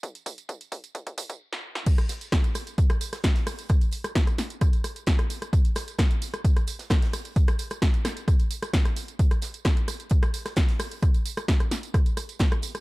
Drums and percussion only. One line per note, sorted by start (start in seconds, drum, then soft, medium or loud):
0.03 kick loud
0.03 closed hi-hat medium
0.03 tambourine soft
0.15 closed hi-hat medium
0.15 tambourine soft
0.26 kick loud
0.26 open hi-hat loud
0.26 tambourine medium
0.38 closed hi-hat medium
0.38 tambourine soft
0.49 kick loud
0.49 closed hi-hat medium
0.49 tambourine soft
0.61 closed hi-hat medium
0.61 tambourine soft
0.72 kick loud
0.72 open hi-hat loud
0.72 tambourine medium
0.84 closed hi-hat medium
0.84 tambourine soft
0.95 kick loud
0.95 closed hi-hat medium
0.95 tambourine soft
1.07 kick medium
1.07 closed hi-hat medium
1.07 tambourine soft
1.18 kick loud
1.18 open hi-hat loud
1.18 tambourine medium
1.30 kick medium
1.30 closed hi-hat medium
1.30 tambourine soft
1.53 snare medium
1.75 snare medium
1.86 kick loud
1.86 closed hi-hat medium
1.86 crash loud
1.86 tambourine soft
1.98 cross-stick medium
1.98 closed hi-hat medium
1.98 tambourine soft
2.09 snare soft
2.09 closed hi-hat medium
2.09 open hi-hat loud
2.09 tambourine medium
2.21 closed hi-hat medium
2.21 tambourine soft
2.32 kick loud
2.32 cross-stick medium
2.32 snare loud
2.32 closed hi-hat medium
2.32 tambourine soft
2.44 closed hi-hat medium
2.44 tambourine soft
2.55 cross-stick medium
2.55 closed hi-hat medium
2.55 open hi-hat medium
2.55 tambourine medium
2.67 closed hi-hat medium
2.67 tambourine soft
2.78 kick loud
2.78 closed hi-hat medium
2.78 closed hi-hat loud
2.78 tambourine soft
2.90 cross-stick medium
2.90 closed hi-hat medium
2.90 tambourine soft
3.01 closed hi-hat medium
3.01 open hi-hat loud
3.01 tambourine medium
3.13 cross-stick medium
3.13 snare medium
3.13 closed hi-hat medium
3.13 tambourine soft
3.24 kick loud
3.24 snare loud
3.24 closed hi-hat medium
3.24 tambourine soft
3.35 snare medium
3.35 closed hi-hat medium
3.35 tambourine soft
3.47 cross-stick medium
3.47 open hi-hat loud
3.47 open hi-hat medium
3.47 tambourine medium
3.59 closed hi-hat medium
3.59 tambourine soft
3.69 kick loud
3.69 cross-stick medium
3.69 closed hi-hat medium
3.69 tambourine soft
3.81 closed hi-hat soft
3.81 closed hi-hat medium
3.81 tambourine soft
3.91 closed hi-hat medium
3.91 open hi-hat loud
3.91 tambourine medium
4.04 cross-stick medium
4.04 closed hi-hat soft
4.04 closed hi-hat medium
4.04 tambourine soft
4.15 kick loud
4.15 snare loud
4.15 closed hi-hat medium
4.15 tambourine soft
4.27 cross-stick medium
4.27 closed hi-hat medium
4.27 tambourine soft
4.38 snare medium
4.38 closed hi-hat medium
4.38 open hi-hat loud
4.38 tambourine medium
4.50 closed hi-hat medium
4.50 tambourine soft
4.61 kick loud
4.61 cross-stick medium
4.61 closed hi-hat medium
4.61 tambourine soft
4.73 closed hi-hat medium
4.73 tambourine soft
4.84 cross-stick medium
4.84 closed hi-hat medium
4.84 open hi-hat loud
4.84 tambourine medium
4.96 closed hi-hat medium
4.96 tambourine soft
5.07 kick loud
5.07 snare loud
5.07 closed hi-hat medium
5.07 tambourine soft
5.19 cross-stick medium
5.19 closed hi-hat medium
5.19 tambourine soft
5.30 closed hi-hat medium
5.30 open hi-hat loud
5.30 tambourine medium
5.42 cross-stick medium
5.42 closed hi-hat medium
5.42 tambourine soft
5.53 kick loud
5.53 closed hi-hat medium
5.53 tambourine soft
5.65 closed hi-hat medium
5.65 tambourine soft
5.75 cross-stick medium
5.75 snare soft
5.75 closed hi-hat medium
5.75 open hi-hat loud
5.75 tambourine medium
5.88 closed hi-hat medium
5.88 tambourine soft
5.98 kick loud
5.98 cross-stick medium
5.98 snare loud
5.98 closed hi-hat medium
5.98 tambourine soft
6.11 closed hi-hat medium
6.11 tambourine soft
6.22 closed hi-hat medium
6.22 open hi-hat loud
6.22 tambourine medium
6.34 cross-stick medium
6.34 closed hi-hat medium
6.34 tambourine soft
6.44 kick loud
6.44 closed hi-hat medium
6.44 tambourine soft
6.57 cross-stick medium
6.57 closed hi-hat medium
6.57 tambourine soft
6.67 closed hi-hat medium
6.67 open hi-hat loud
6.67 tambourine medium
6.79 snare medium
6.79 closed hi-hat medium
6.79 tambourine soft
6.90 kick loud
6.90 cross-stick medium
6.90 snare loud
6.90 closed hi-hat medium
6.90 tambourine soft
7.02 snare medium
7.02 closed hi-hat medium
7.02 tambourine soft
7.13 cross-stick medium
7.13 open hi-hat medium
7.13 open hi-hat loud
7.13 tambourine medium
7.25 closed hi-hat medium
7.25 tambourine soft
7.36 kick loud
7.36 closed hi-hat medium
7.36 tambourine soft
7.47 cross-stick loud
7.47 closed hi-hat soft
7.47 closed hi-hat medium
7.47 tambourine soft
7.59 closed hi-hat medium
7.59 open hi-hat loud
7.59 tambourine medium
7.70 cross-stick medium
7.70 closed hi-hat soft
7.70 closed hi-hat medium
7.70 tambourine soft
7.82 kick loud
7.82 snare loud
7.82 closed hi-hat medium
7.82 tambourine soft
7.94 closed hi-hat medium
7.94 tambourine soft
8.05 cross-stick loud
8.05 snare medium
8.05 closed hi-hat medium
8.05 open hi-hat loud
8.05 tambourine medium
8.17 closed hi-hat medium
8.17 tambourine soft
8.28 kick loud
8.28 cross-stick medium
8.28 closed hi-hat medium
8.28 closed hi-hat loud
8.28 tambourine soft
8.40 closed hi-hat medium
8.40 tambourine soft
8.51 closed hi-hat medium
8.51 open hi-hat loud
8.51 tambourine medium
8.62 cross-stick medium
8.62 closed hi-hat medium
8.62 tambourine soft
8.73 kick loud
8.73 snare loud
8.73 closed hi-hat medium
8.73 tambourine soft
8.85 cross-stick medium
8.85 closed hi-hat medium
8.85 tambourine soft
8.96 closed hi-hat medium
8.96 open hi-hat loud
8.96 tambourine medium
9.08 closed hi-hat medium
9.08 tambourine soft
9.19 kick loud
9.19 closed hi-hat medium
9.19 tambourine soft
9.31 cross-stick medium
9.31 closed hi-hat medium
9.31 tambourine soft
9.42 snare medium
9.42 closed hi-hat medium
9.42 open hi-hat loud
9.42 tambourine medium
9.54 closed hi-hat soft
9.54 tambourine soft
9.65 kick loud
9.65 cross-stick medium
9.65 snare loud
9.65 closed hi-hat medium
9.65 tambourine soft
9.77 closed hi-hat soft
9.77 tambourine soft
9.88 cross-stick medium
9.88 closed hi-hat medium
9.88 open hi-hat loud
9.88 tambourine medium
10.00 closed hi-hat soft
10.00 tambourine soft
10.10 kick loud
10.10 closed hi-hat medium
10.10 tambourine soft
10.23 cross-stick loud
10.23 closed hi-hat medium
10.23 tambourine soft
10.34 closed hi-hat medium
10.34 open hi-hat loud
10.34 tambourine medium
10.45 cross-stick medium
10.45 snare soft
10.45 closed hi-hat soft
10.45 tambourine soft
10.56 kick loud
10.56 snare loud
10.56 closed hi-hat medium
10.56 tambourine soft
10.68 snare medium
10.68 closed hi-hat medium
10.68 tambourine soft
10.79 cross-stick loud
10.79 open hi-hat medium
10.79 tambourine medium
10.91 closed hi-hat medium
10.91 tambourine soft
11.03 kick loud
11.03 cross-stick medium
11.03 closed hi-hat medium
11.03 tambourine soft
11.14 closed hi-hat medium
11.14 closed hi-hat soft
11.14 tambourine soft
11.25 closed hi-hat medium
11.25 open hi-hat loud
11.25 tambourine medium
11.37 cross-stick loud
11.37 closed hi-hat soft
11.37 tambourine soft
11.48 kick loud
11.48 snare loud
11.48 closed hi-hat medium
11.48 closed hi-hat loud
11.48 tambourine soft
11.60 cross-stick medium
11.60 closed hi-hat soft
11.60 tambourine soft
11.71 snare medium
11.71 closed hi-hat medium
11.71 open hi-hat medium
11.71 tambourine medium
11.83 closed hi-hat soft
11.83 tambourine soft
11.94 kick loud
11.94 cross-stick medium
11.94 closed hi-hat medium
11.94 tambourine soft
12.06 closed hi-hat medium
12.06 tambourine soft
12.17 cross-stick medium
12.17 closed hi-hat medium
12.17 open hi-hat loud
12.17 tambourine medium
12.29 closed hi-hat medium
12.29 tambourine soft
12.39 kick loud
12.39 snare loud
12.39 closed hi-hat medium
12.39 tambourine soft
12.52 cross-stick loud
12.52 closed hi-hat medium
12.52 tambourine soft
12.62 closed hi-hat medium
12.62 open hi-hat medium
12.62 tambourine medium
12.75 cross-stick medium
12.75 closed hi-hat medium
12.75 tambourine soft